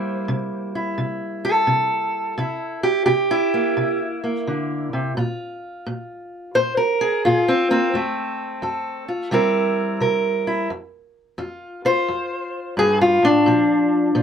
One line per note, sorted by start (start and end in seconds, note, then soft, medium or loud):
0.00 0.24 C3 medium
0.00 2.35 G3 soft
0.00 2.41 A#3 soft
0.00 0.75 E4 soft
0.00 1.39 C5 medium
0.28 0.94 C3 medium
0.75 2.35 E4 soft
0.98 1.63 C3 medium
1.45 2.83 A4 medium
1.67 2.33 C3 medium
2.38 3.03 C3 medium
2.38 3.30 E4 soft
2.83 3.05 G4 medium
3.06 3.72 C3 medium
3.06 3.99 G4 medium
3.31 5.16 E4 medium
3.54 4.22 A#3 soft
3.77 4.42 C3 medium
4.24 5.14 A#3 soft
4.47 4.93 D3 medium
4.93 5.16 C3 medium
5.17 5.81 A#2 medium
5.17 7.01 F4 soft
5.86 6.50 A#2 medium
6.55 7.20 A#2 medium
6.55 6.77 C5 medium
6.77 7.24 A#4 medium
7.01 7.47 G#4 medium
7.25 7.90 A#2 medium
7.25 7.94 F4 medium
7.48 7.70 C4 medium
7.71 7.91 A#3 soft
7.71 9.08 C4 medium
7.94 8.58 F2 medium
7.94 9.30 A3 soft
8.62 9.27 F2 medium
8.62 9.29 A4 soft
9.08 9.29 F4 soft
9.31 9.96 C3 medium
9.31 10.67 G3 medium
9.31 10.68 C4 medium
9.31 10.46 E4 medium
9.31 10.00 A#4 medium
10.00 10.65 C3 medium
10.00 10.67 A#4 medium
10.47 10.68 E4 medium
10.70 11.34 F2 medium
11.38 12.03 F2 medium
11.38 11.85 F4 soft
11.85 13.01 F4 soft
11.85 12.78 C5 medium
12.08 12.73 F2 medium
12.77 13.22 G2 medium
12.77 13.01 G#4 medium
13.01 13.24 F4 medium
13.22 13.46 A2 medium
13.22 14.23 D4 medium
13.46 14.11 A#2 medium
13.46 14.15 F3 soft
14.15 14.23 A#2 medium
14.15 14.23 F3 soft